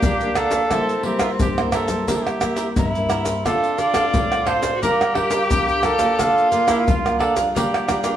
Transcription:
Already playing: nylon-string guitar A#3 D4, tenor saxophone D4, trumpet G4
0.03 nylon-string guitar F3, cavaquinho D4 A#4 D5 F5, pandeiro, maracas, surdo
0.21 nylon-string guitar F3 A#3 D4, pandeiro, maracas
0.35 cavaquinho D4 A#4 D5 F5, trumpet A4, pandeiro, tamborim, maracas
0.51 cavaquinho A#4 D5 F5, pandeiro, maracas, surdo
0.71 nylon-string guitar C3 G3 A#3 E4, tenor saxophone C4, cavaquinho E4 C5 E5, pandeiro, tamborim, maracas, surdo
0.89 pandeiro, maracas
1.03 nylon-string guitar G3 A#3 E4, cavaquinho E4 A#4 C5 E5, trumpet G4, pandeiro
1.19 cavaquinho E4 A#4 C5 E5, trumpet F4, pandeiro, tamborim, maracas, surdo
1.39 nylon-string guitar G2, trumpet G4, pandeiro, maracas, surdo
1.58 nylon-string guitar G3 A#3 E4, cavaquinho A#4 C5 E5, pandeiro, tamborim, maracas
1.72 cavaquinho E4 A#4 C5 E5, trumpet A4, pandeiro, tamborim, maracas
1.88 nylon-string guitar G3 A#3 E4, cavaquinho A#4 C5 E5, pandeiro, maracas, surdo
2.07 nylon-string guitar C3 G3 A#3 E4, cavaquinho E4 A#4 C5 E5, trumpet G4, pandeiro, maracas, surdo
2.15 trumpet A4
2.23 trumpet G4, pandeiro, tamborim, maracas
2.41 nylon-string guitar G3 A#3 E4, cavaquinho E4 A#4 C5 E5, pandeiro, tamborim, maracas, surdo
2.56 cavaquinho E4 A#4 C5 E5, pandeiro, maracas
2.76 nylon-string guitar G2, cavaquinho E4 A#4 C5 E5, tenor saxophone E4, pandeiro, maracas, surdo
2.95 nylon-string guitar G3 A#3 E4, pandeiro, maracas, surdo
3.09 cavaquinho E4 A#4 C5 E5, pandeiro, tamborim, maracas
3.25 cavaquinho A#4 C5 E5, pandeiro, maracas, surdo
3.45 nylon-string guitar D3 C4 F4 A4, cavaquinho F4 A4 C5 D5, tenor saxophone F4, trumpet A4, pandeiro, tamborim, maracas, surdo
3.64 pandeiro, maracas
3.77 cavaquinho F4 A4 C5 D5, trumpet D5, pandeiro, maracas
3.93 nylon-string guitar C4 F4 A4, cavaquinho F4 A4 C5 D5, pandeiro, tamborim, maracas, surdo
4.14 nylon-string guitar A2, pandeiro, maracas, surdo
4.31 cavaquinho A4 C5 D5, pandeiro, tamborim, maracas
4.45 nylon-string guitar C4 F4 A4, cavaquinho F4 A4 C5 D5, trumpet C5, pandeiro, tamborim
4.62 cavaquinho A4 C5 D5, pandeiro, maracas, surdo
4.75 tenor saxophone F#4
4.82 nylon-string guitar G3 D4 F4 A#4, cavaquinho G4 A#4 D5 F5, tenor saxophone G4, trumpet A#4, pandeiro, maracas, surdo
5.01 pandeiro, tamborim, maracas
5.14 nylon-string guitar D4 F4 A#4, cavaquinho G4 A#4 D5 F5, trumpet G4, pandeiro, tamborim, surdo
5.30 cavaquinho G4 A#4 D5 F5, pandeiro, maracas
5.50 nylon-string guitar D3, cavaquinho G4 A#4 D5 F5, pandeiro, maracas, surdo
5.69 pandeiro, maracas, surdo
5.82 nylon-string guitar D4 F4 A#4, cavaquinho G4 A#4 D5 F5, trumpet A4, pandeiro, tamborim, maracas
5.98 nylon-string guitar A#3 D4 F4, cavaquinho A#4 D5 F5, pandeiro, maracas, surdo
6.18 nylon-string guitar A#2, cavaquinho D4 D5 F5, tenor saxophone F4, pandeiro, tamborim, maracas, surdo
6.38 pandeiro, maracas
6.51 nylon-string guitar A#3 D4 F4, cavaquinho D4 A#4 D5 F5, trumpet F4, pandeiro, maracas
6.67 cavaquinho D4 A#4 D5 F5, trumpet E4, pandeiro, tamborim, maracas, surdo
6.87 nylon-string guitar F3, trumpet F4, pandeiro, maracas, surdo
7.05 nylon-string guitar A#3 D4 F4, cavaquinho A#4 D5 F5, pandeiro, tamborim, maracas
7.19 cavaquinho D4 A#4 D5 F5, trumpet A4, pandeiro, tamborim
7.35 nylon-string guitar G3 D4 F4, cavaquinho A#4 D5 F5, pandeiro, maracas, surdo
7.55 nylon-string guitar A#2, tenor saxophone D4, cavaquinho F4 A#4 D5 G5, trumpet G4, pandeiro, maracas, surdo
7.74 pandeiro, tamborim, maracas
7.88 nylon-string guitar G3 D4 F4, cavaquinho F4 A#4 D5 G5, pandeiro, tamborim, maracas, surdo
8.03 cavaquinho F4 A#4 D5 G5, pandeiro, maracas

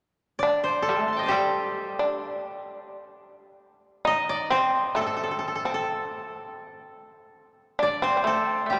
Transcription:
0.39 shamisen D4, koto D5
0.64 koto C5
0.82 koto A4
0.89 shamisen A3
1.08 koto C6
1.13 koto G5 A5
1.19 koto D#5
1.23 koto C5 D5
1.28 shamisen G3, koto G4 A4
1.99 shamisen D4
4.05 shamisen D#4, koto D#5
4.29 koto D5
4.50 shamisen C4, koto C5
4.95 shamisen A3, koto A4
5.01 koto A4
5.07 koto A4
5.17 koto A4
5.23 koto A4
5.31 koto A4
5.39 koto A4
5.48 koto A4
5.55 koto A4
5.65 shamisen C4, koto A4
5.74 koto A4
7.79 shamisen D4, koto D5
8.02 shamisen C4, koto C5
8.17 shamisen C4
8.24 shamisen A3, koto A4
8.66 shamisen A3, koto G4
8.73 shamisen G3

